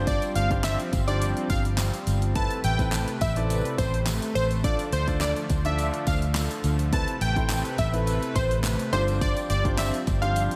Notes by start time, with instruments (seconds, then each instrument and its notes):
Already playing: fingered electric bass G1, supersaw synth F3 G3 C4, grand piano D4 F4 G4 C5
0.07 digital synth lead D5, kick, closed hi-hat, tambourine
0.22 closed hi-hat, tambourine
0.36 fingered electric bass G1, digital synth lead F5, closed hi-hat, tambourine
0.51 grand piano D4 F4 G4 C5, kick, closed hi-hat
0.64 digital synth lead E5, snare, clap, closed hi-hat, tambourine
0.80 closed hi-hat
0.93 fingered electric bass G1, kick, closed hi-hat, tambourine
1.08 grand piano D4 F4 G4 C5, digital synth lead D5, closed hi-hat, tambourine
1.21 closed hi-hat, tambourine
1.37 closed hi-hat
1.50 fingered electric bass G1, digital synth lead F5, kick, closed hi-hat, tambourine
1.65 closed hi-hat
1.78 snare, clap, closed hi-hat, tambourine
1.94 closed hi-hat
2.07 fingered electric bass G1, closed hi-hat, tambourine
2.22 closed hi-hat
2.35 grand piano C4 E4 A4 B4, digital synth lead A5, kick, closed hi-hat, tambourine
2.50 closed hi-hat
2.64 fingered electric bass A1, digital synth lead G5, closed hi-hat, tambourine
2.79 grand piano C4 E4 A4 B4, kick, closed hi-hat, tambourine
2.92 snare, clap, closed hi-hat, tambourine
3.08 closed hi-hat
3.21 fingered electric bass A1, digital synth lead E5, kick, closed hi-hat, tambourine
3.36 grand piano C4 E4 A4 D5, closed hi-hat
3.50 closed hi-hat, tambourine
3.65 closed hi-hat
3.78 fingered electric bass A1, digital synth lead C5, kick, closed hi-hat, tambourine
3.94 closed hi-hat
4.06 snare, clap, closed hi-hat, tambourine
4.22 closed hi-hat
4.35 fingered electric bass A1, digital synth lead C5, closed hi-hat, tambourine
4.51 closed hi-hat, tambourine
4.64 supersaw synth D3 F3, grand piano D4 F4 A4 D5, digital synth lead D5, kick, closed hi-hat, tambourine
4.79 closed hi-hat, tambourine
4.92 fingered electric bass D2, digital synth lead C5, closed hi-hat, tambourine
5.08 grand piano D4 F4 A4 D5, kick, closed hi-hat, tambourine
5.21 digital synth lead D5, snare, clap, closed hi-hat, tambourine
5.36 closed hi-hat
5.50 fingered electric bass D2, kick, closed hi-hat, tambourine
5.65 grand piano D4 F4 A4 D5, digital synth lead E5, closed hi-hat
5.78 closed hi-hat, tambourine
5.94 closed hi-hat
6.07 fingered electric bass D2, digital synth lead F5, kick, closed hi-hat, tambourine
6.22 closed hi-hat
6.35 snare, clap, closed hi-hat, tambourine
6.51 closed hi-hat
6.64 fingered electric bass D2, closed hi-hat, tambourine
6.79 closed hi-hat
6.93 grand piano C4 E4 A4 B4, digital synth lead A5, kick, closed hi-hat, tambourine
7.08 closed hi-hat
7.21 fingered electric bass A1, digital synth lead G5, closed hi-hat, tambourine
7.36 grand piano C4 E4 A4 C5, kick, closed hi-hat
7.49 snare, clap, closed hi-hat, tambourine
7.65 closed hi-hat
7.78 fingered electric bass A1, digital synth lead E5, kick, closed hi-hat, tambourine
7.93 grand piano C4 E4 A4 B4, closed hi-hat
8.07 closed hi-hat, tambourine
8.23 closed hi-hat
8.36 fingered electric bass A1, digital synth lead C5, kick, closed hi-hat, tambourine
8.51 closed hi-hat
8.64 snare, clap, closed hi-hat, tambourine
8.79 closed hi-hat
8.93 fingered electric bass G1, supersaw synth F3 G3 C4, grand piano D4 F4 G4 C5, digital synth lead C5, closed hi-hat, tambourine
9.08 closed hi-hat, tambourine
9.21 digital synth lead D5, kick, closed hi-hat, tambourine
9.37 closed hi-hat, tambourine
9.50 fingered electric bass G1, digital synth lead D5, closed hi-hat, tambourine
9.65 grand piano D4 F4 G4 C5, kick, closed hi-hat
9.78 digital synth lead E5, snare, clap, closed hi-hat, tambourine
9.94 closed hi-hat
10.07 fingered electric bass G1, kick, closed hi-hat, tambourine
10.22 grand piano D4 F4 G4 C5, digital synth lead F5, closed hi-hat
10.36 closed hi-hat, tambourine
10.51 closed hi-hat